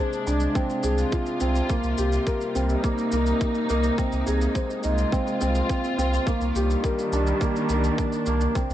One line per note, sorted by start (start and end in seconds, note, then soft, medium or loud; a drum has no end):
0.00 6.27 C3 medium
0.00 1.70 G#3 medium
0.00 1.70 D4 medium
0.00 0.83 G#4 medium
0.00 0.25 C5 medium
0.13 shaker soft
0.27 0.47 C2 medium
0.27 0.54 D4 medium
0.27 shaker medium
0.40 shaker soft
0.47 2.62 F4 medium
0.55 0.82 C4 medium
0.55 kick loud
0.55 shaker medium
0.70 shaker soft
0.83 1.04 C2 medium
0.83 1.00 G#4 medium
0.83 shaker medium
0.98 shaker soft
1.12 1.39 F4 medium
1.12 kick loud
1.12 shaker soft
1.26 shaker soft
1.40 1.62 C2 loud
1.40 1.57 C4 medium
1.40 shaker medium
1.56 shaker soft
1.70 1.86 A#3 medium
1.70 kick loud
1.70 shaker medium
1.83 1.94 C2 loud
1.83 shaker soft
1.98 2.19 C2 medium
1.98 2.25 G4 medium
1.98 shaker medium
2.09 3.99 G3 medium
2.09 shaker soft
2.26 2.54 A#4 medium
2.26 kick medium
2.26 shaker medium
2.33 7.19 A#3 medium
2.41 shaker soft
2.55 2.76 C2 medium
2.55 2.82 C4 medium
2.55 shaker medium
2.69 4.90 D#4 medium
2.69 shaker soft
2.84 3.11 A#3 medium
2.84 kick medium
2.84 shaker medium
2.98 shaker soft
3.12 3.33 C2 medium
3.12 3.40 A#3 medium
3.12 shaker medium
3.26 shaker soft
3.41 3.58 A#3 medium
3.41 kick loud
3.41 shaker medium
3.55 shaker soft
3.69 3.90 C2 medium
3.69 3.97 A#3 medium
3.69 shaker medium
3.84 shaker soft
3.98 4.15 C4 medium
3.98 kick loud
3.98 shaker medium
4.12 4.23 C2 loud
4.12 shaker soft
4.26 4.48 C2 medium
4.26 4.54 G#4 medium
4.26 shaker medium
4.37 6.26 G#3 medium
4.41 shaker soft
4.55 4.82 C5 medium
4.55 kick medium
4.55 shaker medium
4.70 shaker soft
4.83 5.05 C2 medium
4.83 5.11 D#4 medium
4.83 shaker medium
4.91 7.18 F4 medium
4.98 shaker soft
5.12 5.40 C4 medium
5.12 kick medium
5.12 shaker medium
5.27 shaker soft
5.41 5.62 C2 medium
5.41 5.68 C4 medium
5.41 shaker medium
5.55 shaker soft
5.69 5.86 C4 medium
5.69 kick medium
5.69 shaker medium
5.84 shaker soft
5.98 6.19 C2 loud
5.98 6.25 C4 medium
5.98 shaker medium
6.14 shaker soft
6.25 8.55 D#3 medium
6.25 6.43 A#3 medium
6.25 kick loud
6.25 shaker medium
6.41 6.51 C2 medium
6.41 shaker soft
6.53 6.76 C2 loud
6.53 8.54 G3 medium
6.53 6.83 G4 medium
6.53 shaker medium
6.68 8.74 D4 medium
6.68 shaker soft
6.84 7.11 A#4 medium
6.84 kick medium
6.84 shaker medium
6.99 shaker soft
7.12 7.33 C2 medium
7.12 7.40 D4 medium
7.12 shaker medium
7.27 shaker soft
7.41 7.68 A#3 medium
7.41 kick loud
7.41 shaker medium
7.56 shaker soft
7.69 7.90 C2 medium
7.69 7.97 A#3 medium
7.69 shaker medium
7.84 shaker soft
7.98 8.15 A#3 medium
7.98 kick loud
7.98 shaker soft
8.12 shaker soft
8.26 8.47 C2 medium
8.26 8.54 A#3 medium
8.26 shaker medium
8.41 shaker soft
8.55 8.74 C3 medium
8.55 8.72 C4 medium
8.55 kick medium
8.55 shaker medium
8.70 8.74 C2 loud
8.70 shaker soft